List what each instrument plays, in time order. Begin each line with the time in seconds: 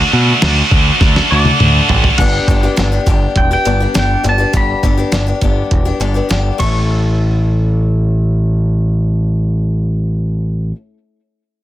Already playing: distorted electric guitar D3 A3 D4 F#4, clean electric guitar A5
0.12 picked electric bass B2, distorted electric guitar D3 A3 D4 F#4
0.42 picked electric bass D2, distorted electric guitar D3 A3 D4 F#4, snare, crash
0.70 picked electric bass D2, distorted electric guitar D3 A3 D4 F#4, kick
1.00 picked electric bass D2, distorted electric guitar D3 A3 D4 F#4, kick, snare
1.16 snare
1.30 picked electric bass D2, distorted electric guitar D3 A3 D4 F#4, clean electric guitar D5
1.45 high tom
1.59 picked electric bass D2, distorted electric guitar D3 A3 D4 F#4, mid tom
1.89 picked electric bass A1, distorted electric guitar D3 A3 D4 F#4, floor tom
2.04 floor tom
2.18 picked electric bass G1, steel-string acoustic guitar G3 B3 D4 G4, clean electric guitar F#5, kick, closed hi-hat, crash
2.48 picked electric bass G1, steel-string acoustic guitar G3 B3 D4 G4, kick, closed hi-hat
2.63 steel-string acoustic guitar B3 D4 G4
2.76 picked electric bass G1, steel-string acoustic guitar G3 B3 D4 G4, snare, closed hi-hat
2.92 steel-string acoustic guitar B3 D4 G4
3.06 picked electric bass G1, steel-string acoustic guitar G3 B3 D4 G4, kick, closed hi-hat
3.36 picked electric bass E1, clean electric guitar G5, kick, closed hi-hat
3.51 steel-string acoustic guitar B3 D4 G4, clean electric guitar G5
3.65 picked electric bass G1, steel-string acoustic guitar G3 B3 D4 G4, closed hi-hat
3.80 steel-string acoustic guitar B3 D4 G4
3.94 picked electric bass G1, steel-string acoustic guitar G3 B3 D4 G4, snare, closed hi-hat
3.99 clean electric guitar G5
4.24 picked electric bass G1, steel-string acoustic guitar G3 B3 D4 G4, closed hi-hat
4.29 clean electric guitar A5
4.38 steel-string acoustic guitar B3 D4 G4
4.53 picked electric bass G1, steel-string acoustic guitar G3 B3 D4 G4, clean electric guitar B5, kick, closed hi-hat
4.83 picked electric bass G1, steel-string acoustic guitar G3 B3 D4 G4, kick, closed hi-hat
4.97 steel-string acoustic guitar B3 D4 G4
5.12 picked electric bass G1, steel-string acoustic guitar G3 B3 D4 G4, snare, closed hi-hat
5.26 steel-string acoustic guitar B3 D4 G4
5.41 picked electric bass G1, steel-string acoustic guitar G3 B3 D4 G4, kick, closed hi-hat
5.71 picked electric bass E1, kick, closed hi-hat
5.85 steel-string acoustic guitar B3 D4 G4
6.00 picked electric bass G1, steel-string acoustic guitar G3 B3 D4 G4, closed hi-hat
6.14 steel-string acoustic guitar B3 D4 G4
6.29 picked electric bass G1, steel-string acoustic guitar G3 B3 D4 G4, snare, closed hi-hat
6.58 picked electric bass A1, steel-string acoustic guitar A3 C#4 E4 A4, clean electric guitar C#6, kick, ride